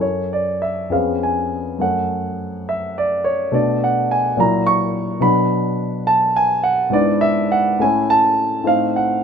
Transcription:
grand piano
Already playing: F#2
0.00 C#4 A4 C#5
0.33 D5
0.62 E5
0.90 F2 B3 C#4 G#4 F5
1.23 G#5
1.79 F#2 A3 C#4 A4 F#5
2.69 E5
2.98 D5
3.24 C#5
3.52 B2 A3 D4 F#4 D5
3.84 F#5
4.11 G#5
4.37 A#2 F#3 E4 F#4 A#5
4.67 C#6
5.20 B2 F#3 D4 F#4 B5
6.07 A5
6.36 G#5
6.64 F#5
6.90 G#2 B3 D4 E4 D5
7.21 E5
7.52 F#5
7.79 A2 A3 C#4 E4 G#5
8.10 A5
8.64 A2 A3 C4 D#4 F5
8.96 F#5

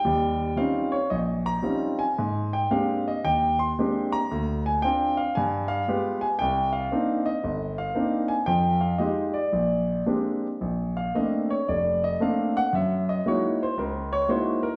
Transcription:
grand piano
Already playing: G5
0.05 D#2 G3
0.56 G3 C4 C#4 D#4 F4 F5
0.92 C#5
1.10 A#1 D#5
1.46 A#5
1.62 G3 C4 C#4 D#4 F4
1.99 G#5
2.19 G#2
2.53 G5
2.71 G#3 A#3 C4 D4 G4 F5
3.08 D#5
3.24 D#2 G5
3.59 C6
3.79 G#3 A#3 C4 D4 G4
4.12 A#5
4.31 D2
4.66 G#5
4.82 C4 D4 F4 G5
5.17 F5
5.35 G2 G#5
5.68 F5
5.88 G#3 B3 F4 G4
6.21 G#5
6.39 C2 G5
6.73 F5
6.92 A#3 C4 D4 D#4
7.26 D#5
7.44 G1
7.78 F5
7.95 A#3 C4 D4 D#4
8.28 G#5
8.46 F2 F3 G5
8.81 F5
8.98 G#3 D#4 F4 G4 D#5
9.34 D5
9.53 A#1
10.06 G#3 A#3 C4 D4 G4
10.61 A#1
10.97 F5
11.15 A3 A#3 C4 D4 D#5
11.50 C#5
11.68 F1 D5
12.04 D#5
12.20 A3 A#3 C4 D4 F5
12.57 F#5
12.73 F#2 E5
13.09 D#5
13.26 G#3 A#3 D#4 E4 F#4 C#5
13.63 C5
13.78 C#2 A#4
14.13 C#5
14.29 G#3 A#3 D#4 E4 F#4 C5
14.63 A#4

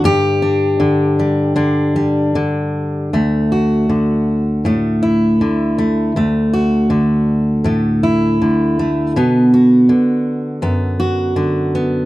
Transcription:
steel-string acoustic guitar
Already playing: D3
0.04 G2 G4
0.42 D4
0.80 D3
1.19 G3
1.56 D3 D4
1.96 G3
2.35 D3
3.13 D2 A3
3.52 F#4
3.89 D3
4.65 A2 A3
5.03 E4
5.41 D3
5.78 A3
6.16 D2 A3
6.53 F#4
6.90 D3
7.64 A2 A3
8.03 E4
8.42 D3
8.79 A3
9.16 B2 B3
9.54 F#4
9.89 D3
10.62 F#2 B3
11.00 F#4
11.36 D3
11.75 B3

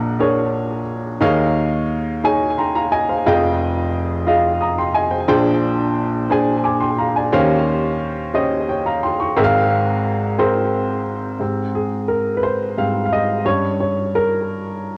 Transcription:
upright piano
Already playing: A#1 A#2 D4 G#4 A#4 F#5
0.19 D4 G#4 A#4 C#5
1.21 D#2 D#3 D#4 G#4 C#5 F5
2.24 D#4 G#4 C#5 G#5
2.58 G5 A#5 C6
2.75 F5 A#5
2.92 D#5 G#5
3.09 C5 F5
3.26 F1 F2 F4 G#4 D#5 G5
4.27 F4 G#4 D#5 F5
4.61 A#5 D#6
4.78 G5 C6
4.94 D#5 G#5
5.11 C5 G5
5.28 A#1 A#2 D4 G#4 C5 G5
6.30 D4 G#4 C5 G#5
6.64 G#5 D6
6.80 G5 C6
6.98 F5 A#5
7.16 D5 G#5
7.32 D#2 D#3 C#4 G4 C5 F5
8.34 C#4 G4 C5 D#5
8.69 C#5 G5
8.86 F5 A#5
9.03 G5 C6
9.20 G5 C#6
9.37 G#1 G#2 C4 G#4 A#4 E5
9.44 F5
10.38 C4 G#4 A#4 C5
11.39 G#2 C4 G4
11.75 G#4
12.08 A#4
12.37 B4
12.43 C5
12.77 G#2 G3 C4 F5
13.06 F5
13.13 D#5
13.45 G2 G3 C#4 C#5
13.80 C#5
14.15 A#4

